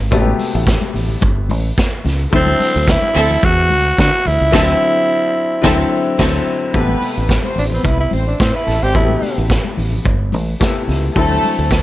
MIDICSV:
0, 0, Header, 1, 6, 480
1, 0, Start_track
1, 0, Tempo, 551978
1, 102, Time_signature, 4, 2, 24, 8
1, 10283, End_track
2, 0, Start_track
2, 0, Title_t, "String section"
2, 0, Program_c, 0, 48
2, 2024, Note_on_c, 0, 60, 70
2, 2025, Note_on_c, 0, 69, 80
2, 2025, Note_on_c, 0, 76, 94
2, 2132, Note_off_c, 0, 60, 0
2, 2132, Note_off_c, 0, 69, 0
2, 2132, Note_off_c, 0, 76, 0
2, 2744, Note_on_c, 0, 69, 103
2, 2745, Note_on_c, 0, 60, 104
2, 2746, Note_on_c, 0, 76, 103
2, 2947, Note_off_c, 0, 69, 0
2, 2948, Note_off_c, 0, 60, 0
2, 2948, Note_off_c, 0, 76, 0
2, 3934, Note_on_c, 0, 76, 88
2, 3935, Note_on_c, 0, 60, 102
2, 3936, Note_on_c, 0, 69, 90
2, 4103, Note_off_c, 0, 76, 0
2, 4104, Note_off_c, 0, 60, 0
2, 4104, Note_off_c, 0, 69, 0
2, 4901, Note_on_c, 0, 60, 108
2, 4902, Note_on_c, 0, 69, 109
2, 4903, Note_on_c, 0, 76, 100
2, 5067, Note_off_c, 0, 60, 0
2, 5068, Note_off_c, 0, 69, 0
2, 5069, Note_off_c, 0, 76, 0
2, 5380, Note_on_c, 0, 60, 94
2, 5380, Note_on_c, 0, 69, 96
2, 5380, Note_on_c, 0, 76, 94
2, 5547, Note_off_c, 0, 60, 0
2, 5547, Note_off_c, 0, 69, 0
2, 5547, Note_off_c, 0, 76, 0
2, 5861, Note_on_c, 0, 59, 105
2, 5864, Note_on_c, 0, 71, 106
2, 6313, Note_off_c, 0, 59, 0
2, 6315, Note_off_c, 0, 71, 0
2, 6463, Note_on_c, 0, 60, 78
2, 6463, Note_on_c, 0, 72, 84
2, 6556, Note_off_c, 0, 60, 0
2, 6556, Note_off_c, 0, 72, 0
2, 6701, Note_on_c, 0, 71, 80
2, 6705, Note_on_c, 0, 59, 73
2, 7037, Note_off_c, 0, 71, 0
2, 7040, Note_off_c, 0, 59, 0
2, 7054, Note_on_c, 0, 72, 78
2, 7056, Note_on_c, 0, 60, 76
2, 7250, Note_off_c, 0, 72, 0
2, 7251, Note_off_c, 0, 60, 0
2, 7303, Note_on_c, 0, 60, 76
2, 7303, Note_on_c, 0, 72, 84
2, 7405, Note_off_c, 0, 60, 0
2, 7405, Note_off_c, 0, 72, 0
2, 7425, Note_on_c, 0, 59, 88
2, 7429, Note_on_c, 0, 71, 93
2, 7518, Note_off_c, 0, 59, 0
2, 7520, Note_off_c, 0, 71, 0
2, 7537, Note_on_c, 0, 69, 84
2, 7540, Note_on_c, 0, 57, 73
2, 7642, Note_off_c, 0, 69, 0
2, 7644, Note_off_c, 0, 57, 0
2, 7664, Note_on_c, 0, 60, 76
2, 7666, Note_on_c, 0, 72, 67
2, 7757, Note_off_c, 0, 60, 0
2, 7758, Note_off_c, 0, 72, 0
2, 9706, Note_on_c, 0, 57, 104
2, 9708, Note_on_c, 0, 69, 119
2, 10157, Note_off_c, 0, 57, 0
2, 10158, Note_off_c, 0, 69, 0
2, 10283, End_track
3, 0, Start_track
3, 0, Title_t, "Tenor saxophone"
3, 0, Program_c, 1, 66
3, 2049, Note_on_c, 1, 60, 113
3, 2525, Note_on_c, 1, 64, 107
3, 2538, Note_off_c, 1, 60, 0
3, 3000, Note_on_c, 1, 66, 125
3, 3013, Note_off_c, 1, 64, 0
3, 3471, Note_off_c, 1, 66, 0
3, 3481, Note_on_c, 1, 66, 115
3, 3714, Note_on_c, 1, 64, 116
3, 3727, Note_off_c, 1, 66, 0
3, 5629, Note_off_c, 1, 64, 0
3, 6598, Note_on_c, 1, 62, 78
3, 6652, Note_off_c, 1, 62, 0
3, 6724, Note_on_c, 1, 60, 76
3, 6832, Note_on_c, 1, 64, 86
3, 6845, Note_off_c, 1, 60, 0
3, 6950, Note_off_c, 1, 64, 0
3, 6955, Note_on_c, 1, 64, 72
3, 7062, Note_off_c, 1, 64, 0
3, 7193, Note_on_c, 1, 62, 70
3, 7297, Note_off_c, 1, 62, 0
3, 7313, Note_on_c, 1, 60, 89
3, 7434, Note_on_c, 1, 64, 94
3, 7448, Note_off_c, 1, 60, 0
3, 7680, Note_on_c, 1, 67, 100
3, 7693, Note_off_c, 1, 64, 0
3, 7784, Note_off_c, 1, 67, 0
3, 7789, Note_on_c, 1, 64, 91
3, 8233, Note_off_c, 1, 64, 0
3, 10283, End_track
4, 0, Start_track
4, 0, Title_t, "Grand piano"
4, 0, Program_c, 2, 0
4, 0, Control_c, 2, 64, 127
4, 93, Note_on_c, 2, 48, 79
4, 102, Note_on_c, 2, 57, 83
4, 108, Note_on_c, 2, 59, 79
4, 119, Note_on_c, 2, 66, 72
4, 171, Note_off_c, 2, 66, 0
4, 177, Note_on_c, 2, 67, 91
4, 1983, Note_off_c, 2, 48, 0
4, 1988, Note_off_c, 2, 57, 0
4, 1990, Note_off_c, 2, 59, 0
4, 2005, Note_on_c, 2, 50, 68
4, 2016, Note_on_c, 2, 54, 64
4, 2025, Note_off_c, 2, 67, 0
4, 2025, Note_on_c, 2, 60, 62
4, 2031, Control_c, 2, 64, 0
4, 2032, Note_on_c, 2, 64, 78
4, 2179, Control_c, 2, 64, 127
4, 3899, Note_off_c, 2, 50, 0
4, 3904, Note_off_c, 2, 54, 0
4, 3909, Note_off_c, 2, 60, 0
4, 3913, Note_off_c, 2, 64, 0
4, 3925, Note_on_c, 2, 50, 107
4, 3933, Note_on_c, 2, 54, 105
4, 3941, Note_on_c, 2, 60, 104
4, 3951, Note_on_c, 2, 64, 98
4, 4098, Note_off_c, 2, 50, 0
4, 4103, Note_off_c, 2, 54, 0
4, 4107, Note_off_c, 2, 60, 0
4, 4113, Note_off_c, 2, 64, 0
4, 4883, Note_on_c, 2, 50, 119
4, 4894, Note_on_c, 2, 54, 113
4, 4902, Note_on_c, 2, 60, 125
4, 4911, Note_on_c, 2, 64, 115
4, 5057, Note_off_c, 2, 50, 0
4, 5063, Note_off_c, 2, 54, 0
4, 5068, Note_off_c, 2, 60, 0
4, 5073, Note_off_c, 2, 64, 0
4, 5374, Note_on_c, 2, 50, 98
4, 5382, Note_on_c, 2, 54, 105
4, 5390, Note_on_c, 2, 60, 103
4, 5400, Note_on_c, 2, 64, 89
4, 5543, Note_off_c, 2, 50, 0
4, 5548, Note_off_c, 2, 54, 0
4, 5553, Note_off_c, 2, 60, 0
4, 5559, Note_off_c, 2, 64, 0
4, 5856, Note_on_c, 2, 48, 80
4, 5864, Note_on_c, 2, 57, 69
4, 5873, Note_on_c, 2, 59, 72
4, 5875, Control_c, 2, 64, 0
4, 5880, Note_on_c, 2, 67, 83
4, 6013, Control_c, 2, 64, 127
4, 7746, Note_off_c, 2, 48, 0
4, 7750, Note_off_c, 2, 57, 0
4, 7754, Note_off_c, 2, 59, 0
4, 7758, Note_off_c, 2, 67, 0
4, 7767, Note_on_c, 2, 48, 65
4, 7773, Note_on_c, 2, 57, 57
4, 7783, Note_on_c, 2, 59, 66
4, 7791, Note_on_c, 2, 66, 58
4, 7848, Note_off_c, 2, 66, 0
4, 7850, Note_on_c, 2, 67, 66
4, 9187, Note_off_c, 2, 48, 0
4, 9191, Note_off_c, 2, 57, 0
4, 9196, Note_off_c, 2, 59, 0
4, 9216, Note_on_c, 2, 48, 62
4, 9221, Note_on_c, 2, 57, 53
4, 9225, Note_on_c, 2, 59, 53
4, 9227, Note_on_c, 2, 64, 65
4, 9230, Note_off_c, 2, 67, 0
4, 9693, Note_on_c, 2, 50, 75
4, 9698, Note_on_c, 2, 54, 75
4, 9701, Note_off_c, 2, 48, 0
4, 9703, Note_off_c, 2, 57, 0
4, 9705, Note_off_c, 2, 59, 0
4, 9705, Note_off_c, 2, 64, 0
4, 9709, Note_on_c, 2, 60, 67
4, 9716, Control_c, 2, 64, 0
4, 9718, Note_on_c, 2, 64, 78
4, 9862, Control_c, 2, 64, 127
4, 10283, Note_off_c, 2, 50, 0
4, 10283, Note_off_c, 2, 54, 0
4, 10283, Note_off_c, 2, 60, 0
4, 10283, Note_off_c, 2, 64, 0
4, 10283, End_track
5, 0, Start_track
5, 0, Title_t, "Fingered electric bass"
5, 0, Program_c, 3, 33
5, 0, Note_on_c, 3, 32, 84
5, 107, Note_off_c, 3, 32, 0
5, 107, Note_on_c, 3, 33, 113
5, 279, Note_off_c, 3, 33, 0
5, 476, Note_on_c, 3, 33, 112
5, 647, Note_off_c, 3, 33, 0
5, 830, Note_on_c, 3, 33, 74
5, 1000, Note_off_c, 3, 33, 0
5, 1064, Note_on_c, 3, 31, 100
5, 1309, Note_off_c, 3, 31, 0
5, 1309, Note_on_c, 3, 33, 106
5, 1480, Note_off_c, 3, 33, 0
5, 1786, Note_on_c, 3, 37, 92
5, 1958, Note_off_c, 3, 37, 0
5, 2027, Note_on_c, 3, 38, 100
5, 2199, Note_off_c, 3, 38, 0
5, 2398, Note_on_c, 3, 38, 103
5, 2569, Note_off_c, 3, 38, 0
5, 2749, Note_on_c, 3, 38, 99
5, 2920, Note_off_c, 3, 38, 0
5, 2987, Note_on_c, 3, 40, 95
5, 3231, Note_off_c, 3, 40, 0
5, 3231, Note_on_c, 3, 38, 116
5, 3402, Note_off_c, 3, 38, 0
5, 3466, Note_on_c, 3, 50, 113
5, 3557, Note_off_c, 3, 50, 0
5, 3713, Note_on_c, 3, 38, 92
5, 3801, Note_off_c, 3, 38, 0
5, 3836, Note_on_c, 3, 37, 91
5, 3915, Note_off_c, 3, 37, 0
5, 3947, Note_on_c, 3, 38, 103
5, 4111, Note_off_c, 3, 38, 0
5, 4908, Note_on_c, 3, 38, 108
5, 5071, Note_off_c, 3, 38, 0
5, 5388, Note_on_c, 3, 38, 101
5, 5551, Note_off_c, 3, 38, 0
5, 5865, Note_on_c, 3, 33, 99
5, 6038, Note_off_c, 3, 33, 0
5, 6239, Note_on_c, 3, 33, 100
5, 6410, Note_off_c, 3, 33, 0
5, 6591, Note_on_c, 3, 33, 77
5, 6762, Note_off_c, 3, 33, 0
5, 6826, Note_on_c, 3, 36, 100
5, 6998, Note_off_c, 3, 36, 0
5, 7069, Note_on_c, 3, 33, 97
5, 7241, Note_off_c, 3, 33, 0
5, 7307, Note_on_c, 3, 45, 103
5, 7398, Note_off_c, 3, 45, 0
5, 7548, Note_on_c, 3, 33, 84
5, 7638, Note_off_c, 3, 33, 0
5, 7675, Note_on_c, 3, 32, 85
5, 7784, Note_off_c, 3, 32, 0
5, 7784, Note_on_c, 3, 33, 98
5, 7957, Note_off_c, 3, 33, 0
5, 8155, Note_on_c, 3, 33, 107
5, 8327, Note_off_c, 3, 33, 0
5, 8507, Note_on_c, 3, 33, 76
5, 8680, Note_off_c, 3, 33, 0
5, 8746, Note_on_c, 3, 31, 93
5, 8991, Note_off_c, 3, 31, 0
5, 8991, Note_on_c, 3, 33, 93
5, 9163, Note_off_c, 3, 33, 0
5, 9467, Note_on_c, 3, 37, 88
5, 9640, Note_off_c, 3, 37, 0
5, 9707, Note_on_c, 3, 38, 100
5, 9880, Note_off_c, 3, 38, 0
5, 10075, Note_on_c, 3, 38, 104
5, 10247, Note_off_c, 3, 38, 0
5, 10283, End_track
6, 0, Start_track
6, 0, Title_t, "Drums"
6, 98, Note_on_c, 9, 62, 38
6, 103, Note_on_c, 9, 36, 115
6, 103, Note_on_c, 9, 42, 66
6, 185, Note_off_c, 9, 62, 0
6, 190, Note_off_c, 9, 36, 0
6, 190, Note_off_c, 9, 42, 0
6, 227, Note_on_c, 9, 63, 66
6, 314, Note_off_c, 9, 63, 0
6, 338, Note_on_c, 9, 63, 72
6, 340, Note_on_c, 9, 46, 82
6, 425, Note_off_c, 9, 63, 0
6, 427, Note_off_c, 9, 46, 0
6, 579, Note_on_c, 9, 42, 72
6, 580, Note_on_c, 9, 36, 112
6, 591, Note_on_c, 9, 38, 127
6, 666, Note_off_c, 9, 42, 0
6, 667, Note_off_c, 9, 36, 0
6, 678, Note_off_c, 9, 38, 0
6, 708, Note_on_c, 9, 63, 74
6, 795, Note_off_c, 9, 63, 0
6, 819, Note_on_c, 9, 62, 38
6, 819, Note_on_c, 9, 64, 77
6, 828, Note_on_c, 9, 46, 73
6, 906, Note_off_c, 9, 62, 0
6, 906, Note_off_c, 9, 64, 0
6, 915, Note_off_c, 9, 46, 0
6, 946, Note_on_c, 9, 64, 76
6, 1033, Note_off_c, 9, 64, 0
6, 1053, Note_on_c, 9, 42, 79
6, 1054, Note_on_c, 9, 63, 79
6, 1062, Note_on_c, 9, 36, 116
6, 1140, Note_off_c, 9, 42, 0
6, 1141, Note_off_c, 9, 63, 0
6, 1149, Note_off_c, 9, 36, 0
6, 1298, Note_on_c, 9, 63, 84
6, 1300, Note_on_c, 9, 46, 58
6, 1385, Note_off_c, 9, 63, 0
6, 1387, Note_off_c, 9, 46, 0
6, 1544, Note_on_c, 9, 42, 74
6, 1545, Note_on_c, 9, 62, 33
6, 1546, Note_on_c, 9, 36, 115
6, 1554, Note_on_c, 9, 38, 113
6, 1631, Note_off_c, 9, 42, 0
6, 1632, Note_off_c, 9, 62, 0
6, 1633, Note_off_c, 9, 36, 0
6, 1641, Note_off_c, 9, 38, 0
6, 1780, Note_on_c, 9, 62, 32
6, 1780, Note_on_c, 9, 64, 65
6, 1787, Note_on_c, 9, 46, 66
6, 1801, Note_on_c, 9, 38, 35
6, 1867, Note_off_c, 9, 62, 0
6, 1867, Note_off_c, 9, 64, 0
6, 1874, Note_off_c, 9, 46, 0
6, 1888, Note_off_c, 9, 38, 0
6, 2020, Note_on_c, 9, 62, 37
6, 2022, Note_on_c, 9, 42, 68
6, 2024, Note_on_c, 9, 36, 115
6, 2107, Note_off_c, 9, 62, 0
6, 2109, Note_off_c, 9, 42, 0
6, 2111, Note_off_c, 9, 36, 0
6, 2143, Note_on_c, 9, 63, 83
6, 2230, Note_off_c, 9, 63, 0
6, 2258, Note_on_c, 9, 62, 34
6, 2258, Note_on_c, 9, 63, 77
6, 2261, Note_on_c, 9, 46, 85
6, 2345, Note_off_c, 9, 62, 0
6, 2345, Note_off_c, 9, 63, 0
6, 2348, Note_off_c, 9, 46, 0
6, 2500, Note_on_c, 9, 42, 74
6, 2501, Note_on_c, 9, 36, 108
6, 2507, Note_on_c, 9, 62, 28
6, 2512, Note_on_c, 9, 38, 122
6, 2587, Note_off_c, 9, 42, 0
6, 2588, Note_off_c, 9, 36, 0
6, 2593, Note_off_c, 9, 62, 0
6, 2599, Note_off_c, 9, 38, 0
6, 2629, Note_on_c, 9, 63, 63
6, 2716, Note_off_c, 9, 63, 0
6, 2740, Note_on_c, 9, 64, 77
6, 2747, Note_on_c, 9, 46, 76
6, 2826, Note_off_c, 9, 64, 0
6, 2834, Note_off_c, 9, 46, 0
6, 2867, Note_on_c, 9, 64, 78
6, 2954, Note_off_c, 9, 64, 0
6, 2977, Note_on_c, 9, 42, 73
6, 2980, Note_on_c, 9, 63, 83
6, 2983, Note_on_c, 9, 36, 124
6, 3064, Note_off_c, 9, 42, 0
6, 3067, Note_off_c, 9, 63, 0
6, 3070, Note_off_c, 9, 36, 0
6, 3220, Note_on_c, 9, 46, 67
6, 3221, Note_on_c, 9, 63, 80
6, 3307, Note_off_c, 9, 46, 0
6, 3308, Note_off_c, 9, 63, 0
6, 3462, Note_on_c, 9, 42, 75
6, 3465, Note_on_c, 9, 36, 112
6, 3472, Note_on_c, 9, 38, 114
6, 3549, Note_off_c, 9, 42, 0
6, 3552, Note_off_c, 9, 36, 0
6, 3559, Note_off_c, 9, 38, 0
6, 3701, Note_on_c, 9, 46, 63
6, 3701, Note_on_c, 9, 62, 34
6, 3701, Note_on_c, 9, 64, 70
6, 3788, Note_off_c, 9, 46, 0
6, 3788, Note_off_c, 9, 62, 0
6, 3788, Note_off_c, 9, 64, 0
6, 3941, Note_on_c, 9, 49, 84
6, 3943, Note_on_c, 9, 36, 118
6, 3952, Note_on_c, 9, 38, 106
6, 4028, Note_off_c, 9, 49, 0
6, 4030, Note_off_c, 9, 36, 0
6, 4039, Note_off_c, 9, 38, 0
6, 4905, Note_on_c, 9, 36, 111
6, 4914, Note_on_c, 9, 38, 111
6, 4992, Note_off_c, 9, 36, 0
6, 5001, Note_off_c, 9, 38, 0
6, 5384, Note_on_c, 9, 36, 107
6, 5384, Note_on_c, 9, 49, 89
6, 5395, Note_on_c, 9, 38, 119
6, 5471, Note_off_c, 9, 36, 0
6, 5471, Note_off_c, 9, 49, 0
6, 5482, Note_off_c, 9, 38, 0
6, 5860, Note_on_c, 9, 62, 31
6, 5863, Note_on_c, 9, 36, 107
6, 5863, Note_on_c, 9, 42, 58
6, 5947, Note_off_c, 9, 62, 0
6, 5950, Note_off_c, 9, 36, 0
6, 5950, Note_off_c, 9, 42, 0
6, 5986, Note_on_c, 9, 63, 76
6, 6073, Note_off_c, 9, 63, 0
6, 6097, Note_on_c, 9, 63, 65
6, 6106, Note_on_c, 9, 46, 73
6, 6184, Note_off_c, 9, 63, 0
6, 6193, Note_off_c, 9, 46, 0
6, 6340, Note_on_c, 9, 36, 95
6, 6341, Note_on_c, 9, 42, 67
6, 6343, Note_on_c, 9, 62, 30
6, 6352, Note_on_c, 9, 38, 118
6, 6427, Note_off_c, 9, 36, 0
6, 6428, Note_off_c, 9, 42, 0
6, 6430, Note_off_c, 9, 62, 0
6, 6439, Note_off_c, 9, 38, 0
6, 6466, Note_on_c, 9, 63, 70
6, 6553, Note_off_c, 9, 63, 0
6, 6572, Note_on_c, 9, 64, 79
6, 6590, Note_on_c, 9, 46, 72
6, 6659, Note_off_c, 9, 64, 0
6, 6677, Note_off_c, 9, 46, 0
6, 6701, Note_on_c, 9, 64, 75
6, 6788, Note_off_c, 9, 64, 0
6, 6812, Note_on_c, 9, 62, 33
6, 6812, Note_on_c, 9, 63, 78
6, 6816, Note_on_c, 9, 42, 70
6, 6823, Note_on_c, 9, 36, 112
6, 6899, Note_off_c, 9, 62, 0
6, 6899, Note_off_c, 9, 63, 0
6, 6903, Note_off_c, 9, 42, 0
6, 6910, Note_off_c, 9, 36, 0
6, 7054, Note_on_c, 9, 62, 38
6, 7054, Note_on_c, 9, 63, 74
6, 7063, Note_on_c, 9, 46, 54
6, 7141, Note_off_c, 9, 62, 0
6, 7141, Note_off_c, 9, 63, 0
6, 7150, Note_off_c, 9, 46, 0
6, 7300, Note_on_c, 9, 62, 32
6, 7304, Note_on_c, 9, 36, 126
6, 7305, Note_on_c, 9, 42, 65
6, 7315, Note_on_c, 9, 38, 110
6, 7387, Note_off_c, 9, 62, 0
6, 7391, Note_off_c, 9, 36, 0
6, 7392, Note_off_c, 9, 42, 0
6, 7402, Note_off_c, 9, 38, 0
6, 7537, Note_on_c, 9, 62, 28
6, 7537, Note_on_c, 9, 64, 56
6, 7543, Note_on_c, 9, 46, 65
6, 7557, Note_on_c, 9, 38, 31
6, 7624, Note_off_c, 9, 62, 0
6, 7624, Note_off_c, 9, 64, 0
6, 7630, Note_off_c, 9, 46, 0
6, 7644, Note_off_c, 9, 38, 0
6, 7780, Note_on_c, 9, 42, 61
6, 7782, Note_on_c, 9, 36, 112
6, 7867, Note_off_c, 9, 42, 0
6, 7869, Note_off_c, 9, 36, 0
6, 7903, Note_on_c, 9, 63, 76
6, 7990, Note_off_c, 9, 63, 0
6, 8018, Note_on_c, 9, 63, 72
6, 8023, Note_on_c, 9, 46, 71
6, 8105, Note_off_c, 9, 63, 0
6, 8110, Note_off_c, 9, 46, 0
6, 8258, Note_on_c, 9, 42, 68
6, 8260, Note_on_c, 9, 36, 99
6, 8265, Note_on_c, 9, 62, 29
6, 8270, Note_on_c, 9, 38, 116
6, 8345, Note_off_c, 9, 42, 0
6, 8347, Note_off_c, 9, 36, 0
6, 8352, Note_off_c, 9, 62, 0
6, 8357, Note_off_c, 9, 38, 0
6, 8386, Note_on_c, 9, 63, 67
6, 8473, Note_off_c, 9, 63, 0
6, 8499, Note_on_c, 9, 64, 79
6, 8510, Note_on_c, 9, 46, 68
6, 8586, Note_off_c, 9, 64, 0
6, 8597, Note_off_c, 9, 46, 0
6, 8629, Note_on_c, 9, 64, 80
6, 8716, Note_off_c, 9, 64, 0
6, 8736, Note_on_c, 9, 42, 67
6, 8736, Note_on_c, 9, 63, 78
6, 8743, Note_on_c, 9, 36, 110
6, 8823, Note_off_c, 9, 42, 0
6, 8823, Note_off_c, 9, 63, 0
6, 8830, Note_off_c, 9, 36, 0
6, 8977, Note_on_c, 9, 62, 38
6, 8977, Note_on_c, 9, 63, 84
6, 8981, Note_on_c, 9, 46, 55
6, 9063, Note_off_c, 9, 62, 0
6, 9063, Note_off_c, 9, 63, 0
6, 9068, Note_off_c, 9, 46, 0
6, 9225, Note_on_c, 9, 36, 119
6, 9225, Note_on_c, 9, 42, 71
6, 9226, Note_on_c, 9, 62, 32
6, 9235, Note_on_c, 9, 38, 112
6, 9312, Note_off_c, 9, 36, 0
6, 9312, Note_off_c, 9, 42, 0
6, 9313, Note_off_c, 9, 62, 0
6, 9322, Note_off_c, 9, 38, 0
6, 9457, Note_on_c, 9, 64, 67
6, 9466, Note_on_c, 9, 46, 63
6, 9481, Note_on_c, 9, 38, 29
6, 9544, Note_off_c, 9, 64, 0
6, 9553, Note_off_c, 9, 46, 0
6, 9568, Note_off_c, 9, 38, 0
6, 9700, Note_on_c, 9, 62, 34
6, 9704, Note_on_c, 9, 36, 114
6, 9704, Note_on_c, 9, 42, 56
6, 9787, Note_off_c, 9, 62, 0
6, 9791, Note_off_c, 9, 36, 0
6, 9791, Note_off_c, 9, 42, 0
6, 9825, Note_on_c, 9, 63, 72
6, 9912, Note_off_c, 9, 63, 0
6, 9941, Note_on_c, 9, 62, 33
6, 9941, Note_on_c, 9, 63, 75
6, 9942, Note_on_c, 9, 46, 77
6, 10028, Note_off_c, 9, 46, 0
6, 10028, Note_off_c, 9, 62, 0
6, 10028, Note_off_c, 9, 63, 0
6, 10179, Note_on_c, 9, 42, 70
6, 10181, Note_on_c, 9, 36, 103
6, 10190, Note_on_c, 9, 38, 119
6, 10266, Note_off_c, 9, 42, 0
6, 10268, Note_off_c, 9, 36, 0
6, 10277, Note_off_c, 9, 38, 0
6, 10283, End_track
0, 0, End_of_file